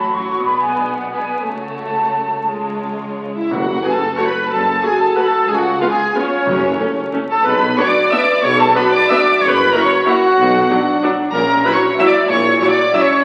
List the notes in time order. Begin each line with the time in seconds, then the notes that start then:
Already playing: A1 A2 F#4 C#5 B5
0.13 F#3 C#4 F#4 C#5 C#6
0.44 B1 B2 B3 G#4 D5 B5
0.60 G#5
0.77 G#3 D4
0.94 F#5
1.11 G#3 B3 D4 G#4 D5 G#5
1.44 C#2 C#3 A3 F#4 C#5 A5
1.80 F#3 C#4
2.14 F#3 C#4
2.48 C#2 C#3 G#3 F4 C#5
2.82 F3 C#4
3.18 F3 C#4
3.35 E4 E5
3.51 F#1 F#2 F#4 F#5
3.83 A3 F#4 G#4 B4 G#5
3.92 A4 A5
4.17 A3 F#4 A4 C#5 C#6
4.26 B4 B5
4.49 F#1 F#2 F#4 A4 A5
4.81 A3 F#4 G#4 G#5
4.98 A4 A5
5.15 A3 F#4 B4 B5
5.22 A4 A5
5.47 C#2 F4 G#4 G#5
5.55 F#4 F#5
5.80 B3 F4 G#4 F5
5.89 G#4 G#5
6.14 B3 C#4 F4 C#5
6.46 F#1 F#2 F#4
6.78 A3 C#4 A4
7.13 A3 C#4
7.29 A4 A5
7.45 B1 B2 G#4 B4 B5
7.78 B3 D4 F#4 C#5 C#6
7.86 D5 D6
8.11 B3 D4 B4 E5 E6
8.19 D5 D6
8.43 B1 B2 G#4 C#5 C#6
8.59 A4 A5
8.75 B3 D4 F#4 B4 B5
8.92 D5 D6
9.09 B3 D4 E5 E6
9.17 D5 D6
9.41 F#1 F#2 C#5 C#6
9.48 B4 B5
9.73 A#3 E4 F#4 A#4 A#5
9.81 C#5 C#6
10.06 A#3 E4 F#4 F#5
10.38 B1 B2
10.69 F#3 D4
11.04 F#3 D4
11.34 A#1 A#2 C#4 A#4 A#5
11.65 F#3 E4 F#4 B4 B5
11.73 C#5 C#6
11.98 F#3 E4 E5 E6
12.06 D5 D6
12.29 A#1 A#2 E4 C#5 C#6
12.60 F#3 E4 F#4 C#5 C#6
12.69 D5 D6
12.93 F#3 C#4 E4 E5 E6
13.01 C#5 C#6